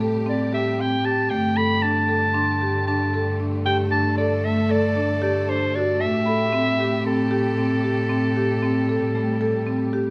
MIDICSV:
0, 0, Header, 1, 6, 480
1, 0, Start_track
1, 0, Key_signature, 0, "minor"
1, 0, Tempo, 522193
1, 1207, Time_signature, 9, 3, 24, 8
1, 9287, End_track
2, 0, Start_track
2, 0, Title_t, "Celesta"
2, 0, Program_c, 0, 8
2, 0, Note_on_c, 0, 81, 57
2, 1381, Note_off_c, 0, 81, 0
2, 2146, Note_on_c, 0, 84, 61
2, 3774, Note_off_c, 0, 84, 0
2, 5750, Note_on_c, 0, 83, 64
2, 7376, Note_off_c, 0, 83, 0
2, 9287, End_track
3, 0, Start_track
3, 0, Title_t, "Soprano saxophone"
3, 0, Program_c, 1, 64
3, 264, Note_on_c, 1, 74, 63
3, 480, Note_off_c, 1, 74, 0
3, 495, Note_on_c, 1, 76, 76
3, 740, Note_on_c, 1, 79, 71
3, 754, Note_off_c, 1, 76, 0
3, 965, Note_on_c, 1, 81, 77
3, 979, Note_off_c, 1, 79, 0
3, 1193, Note_on_c, 1, 79, 78
3, 1206, Note_off_c, 1, 81, 0
3, 1441, Note_on_c, 1, 83, 83
3, 1455, Note_off_c, 1, 79, 0
3, 1674, Note_on_c, 1, 81, 81
3, 1688, Note_off_c, 1, 83, 0
3, 2634, Note_off_c, 1, 81, 0
3, 2639, Note_on_c, 1, 81, 76
3, 3090, Note_off_c, 1, 81, 0
3, 3360, Note_on_c, 1, 79, 84
3, 3470, Note_off_c, 1, 79, 0
3, 3594, Note_on_c, 1, 81, 85
3, 3824, Note_off_c, 1, 81, 0
3, 3838, Note_on_c, 1, 74, 77
3, 4086, Note_on_c, 1, 76, 80
3, 4100, Note_off_c, 1, 74, 0
3, 4329, Note_on_c, 1, 74, 94
3, 4342, Note_off_c, 1, 76, 0
3, 4802, Note_off_c, 1, 74, 0
3, 4807, Note_on_c, 1, 74, 77
3, 5049, Note_on_c, 1, 72, 79
3, 5063, Note_off_c, 1, 74, 0
3, 5289, Note_on_c, 1, 74, 86
3, 5303, Note_off_c, 1, 72, 0
3, 5520, Note_on_c, 1, 76, 90
3, 5534, Note_off_c, 1, 74, 0
3, 6484, Note_off_c, 1, 76, 0
3, 6490, Note_on_c, 1, 69, 81
3, 9287, Note_off_c, 1, 69, 0
3, 9287, End_track
4, 0, Start_track
4, 0, Title_t, "Marimba"
4, 0, Program_c, 2, 12
4, 9, Note_on_c, 2, 69, 74
4, 147, Note_off_c, 2, 69, 0
4, 240, Note_on_c, 2, 60, 69
4, 381, Note_off_c, 2, 60, 0
4, 484, Note_on_c, 2, 67, 65
4, 623, Note_off_c, 2, 67, 0
4, 729, Note_on_c, 2, 60, 64
4, 867, Note_off_c, 2, 60, 0
4, 961, Note_on_c, 2, 67, 66
4, 1101, Note_off_c, 2, 67, 0
4, 1203, Note_on_c, 2, 57, 75
4, 1342, Note_off_c, 2, 57, 0
4, 1441, Note_on_c, 2, 69, 66
4, 1582, Note_off_c, 2, 69, 0
4, 1675, Note_on_c, 2, 62, 69
4, 1817, Note_off_c, 2, 62, 0
4, 1919, Note_on_c, 2, 69, 64
4, 2059, Note_off_c, 2, 69, 0
4, 2154, Note_on_c, 2, 62, 77
4, 2296, Note_off_c, 2, 62, 0
4, 2403, Note_on_c, 2, 67, 68
4, 2543, Note_off_c, 2, 67, 0
4, 2646, Note_on_c, 2, 62, 74
4, 2785, Note_off_c, 2, 62, 0
4, 2887, Note_on_c, 2, 69, 71
4, 3026, Note_off_c, 2, 69, 0
4, 3124, Note_on_c, 2, 62, 61
4, 3263, Note_off_c, 2, 62, 0
4, 3363, Note_on_c, 2, 67, 74
4, 3503, Note_off_c, 2, 67, 0
4, 3595, Note_on_c, 2, 62, 71
4, 3737, Note_off_c, 2, 62, 0
4, 3846, Note_on_c, 2, 69, 72
4, 3985, Note_off_c, 2, 69, 0
4, 4080, Note_on_c, 2, 57, 68
4, 4221, Note_off_c, 2, 57, 0
4, 4315, Note_on_c, 2, 69, 84
4, 4457, Note_off_c, 2, 69, 0
4, 4557, Note_on_c, 2, 62, 71
4, 4698, Note_off_c, 2, 62, 0
4, 4796, Note_on_c, 2, 67, 77
4, 4937, Note_off_c, 2, 67, 0
4, 5044, Note_on_c, 2, 62, 69
4, 5183, Note_off_c, 2, 62, 0
4, 5292, Note_on_c, 2, 66, 67
4, 5429, Note_off_c, 2, 66, 0
4, 5522, Note_on_c, 2, 57, 81
4, 5662, Note_off_c, 2, 57, 0
4, 5765, Note_on_c, 2, 69, 71
4, 5904, Note_off_c, 2, 69, 0
4, 5998, Note_on_c, 2, 60, 77
4, 6139, Note_off_c, 2, 60, 0
4, 6249, Note_on_c, 2, 67, 66
4, 6387, Note_off_c, 2, 67, 0
4, 6477, Note_on_c, 2, 60, 79
4, 6619, Note_off_c, 2, 60, 0
4, 6720, Note_on_c, 2, 67, 74
4, 6860, Note_off_c, 2, 67, 0
4, 6967, Note_on_c, 2, 60, 70
4, 7106, Note_off_c, 2, 60, 0
4, 7208, Note_on_c, 2, 67, 62
4, 7347, Note_off_c, 2, 67, 0
4, 7440, Note_on_c, 2, 60, 72
4, 7580, Note_off_c, 2, 60, 0
4, 7686, Note_on_c, 2, 67, 71
4, 7825, Note_off_c, 2, 67, 0
4, 7928, Note_on_c, 2, 60, 79
4, 8067, Note_off_c, 2, 60, 0
4, 8174, Note_on_c, 2, 69, 71
4, 8311, Note_off_c, 2, 69, 0
4, 8412, Note_on_c, 2, 57, 74
4, 8550, Note_off_c, 2, 57, 0
4, 8648, Note_on_c, 2, 69, 85
4, 8787, Note_off_c, 2, 69, 0
4, 8886, Note_on_c, 2, 60, 74
4, 9026, Note_off_c, 2, 60, 0
4, 9129, Note_on_c, 2, 67, 76
4, 9268, Note_off_c, 2, 67, 0
4, 9287, End_track
5, 0, Start_track
5, 0, Title_t, "String section"
5, 0, Program_c, 3, 48
5, 0, Note_on_c, 3, 48, 71
5, 0, Note_on_c, 3, 55, 59
5, 0, Note_on_c, 3, 67, 69
5, 1167, Note_off_c, 3, 48, 0
5, 1188, Note_off_c, 3, 55, 0
5, 1200, Note_on_c, 3, 57, 69
5, 1210, Note_on_c, 3, 50, 67
5, 3333, Note_off_c, 3, 67, 0
5, 3378, Note_on_c, 3, 69, 77
5, 5492, Note_off_c, 3, 50, 0
5, 5512, Note_off_c, 3, 69, 0
5, 5549, Note_on_c, 3, 48, 68
5, 5549, Note_on_c, 3, 67, 82
5, 7648, Note_off_c, 3, 57, 0
5, 7705, Note_on_c, 3, 55, 68
5, 9287, Note_off_c, 3, 48, 0
5, 9287, Note_off_c, 3, 55, 0
5, 9287, Note_off_c, 3, 67, 0
5, 9287, End_track
6, 0, Start_track
6, 0, Title_t, "Double bass"
6, 0, Program_c, 4, 43
6, 0, Note_on_c, 4, 45, 79
6, 1201, Note_on_c, 4, 43, 74
6, 1215, Note_off_c, 4, 45, 0
6, 5537, Note_on_c, 4, 45, 84
6, 5551, Note_off_c, 4, 43, 0
6, 9287, Note_off_c, 4, 45, 0
6, 9287, End_track
0, 0, End_of_file